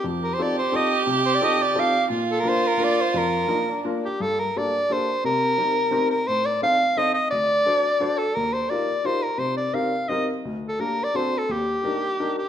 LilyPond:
<<
  \new Staff \with { instrumentName = "Soprano saxophone" } { \time 3/4 \key bes \major \tempo 4 = 173 r8 bes'16 c''16 d''8 c''8 ees''8. r16 | r8 c''16 d''16 ees''8 d''8 f''8. r16 | r8 a'16 bes'16 c''8 bes'8 d''8 c''8 | bes'2 r8 g'8 |
\key g \minor a'8 bes'8 d''4 c''4 | bes'2~ bes'8 bes'8 | c''8 d''8 f''4 ees''8 ees''8 | d''2~ d''8 a'8 |
bes'8 c''8 d''4 c''8 bes'8 | c''8 d''8 f''4 ees''8 r8 | \tuplet 3/2 { r4 a'8 bes'4 d''8 c''4 a'8 } | g'2~ g'8 g'8 | }
  \new Staff \with { instrumentName = "Violin" } { \time 3/4 \key bes \major g'2.~ | g'2. | f'2.~ | f'4 ees'8 d'4 r8 |
\key g \minor r2. | r2. | r2. | r2. |
r2. | r2. | r2. | r2. | }
  \new Staff \with { instrumentName = "Upright piano" } { \time 3/4 \key bes \major f,4 <c' ees' f' a'>8 r8 <c' ees' f' a'>8 r8 | c4 <c' ees' f' a'>8 r8 <c' ees' f' a'>8 r8 | bes,4 <bes d' f' bes'>8 r8 <bes d' f' bes'>8 r8 | f,4 <bes d' f' bes'>8 r8 <bes d' f' bes'>8 r8 |
\key g \minor g,4 <bes d' g' a'>8 r8 <bes d' g' a'>8 r8 | c4 <c' ees' g' bes'>8 r8 <c' ees' g' bes'>8 r8 | a,4 <c' ees' a' c''>8 r8 <c' ees' a' c''>8 r8 | d,4 <d' fis' a' c''>8 r8 <d' fis' a' c''>8 r8 |
ees,4 <ees' f' g' bes'>8 r8 <ees' f' g' bes'>8 r8 | c4 <c' ees' g' bes'>8 r8 <c' ees' g' bes'>8 r8 | d,4 <bes d' g' bes'>8 r8 <c' d' fis' a'>8 r8 | ees,4 <d' ees' g' bes'>8 r8 <d' ees' g' bes'>8 r8 | }
>>